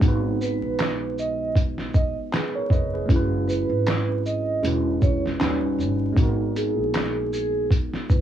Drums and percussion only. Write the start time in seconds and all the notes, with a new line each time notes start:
0.01 kick, closed hi-hat
0.41 shaker
0.79 snare, clap, closed hi-hat
1.18 shaker
1.55 kick, closed hi-hat
1.78 snare
1.94 kick, shaker
2.33 snare, clap, closed hi-hat
2.70 kick, shaker
3.09 kick, closed hi-hat
3.49 shaker
3.87 snare, clap, closed hi-hat
4.26 shaker
4.64 closed hi-hat
5.02 kick, shaker
5.26 snare
5.41 snare, clap, closed hi-hat
5.80 shaker
6.16 kick, closed hi-hat
6.56 closed hi-hat, shaker
6.94 snare, clap, closed hi-hat
7.33 shaker
7.71 kick, closed hi-hat
7.94 snare
8.10 kick, shaker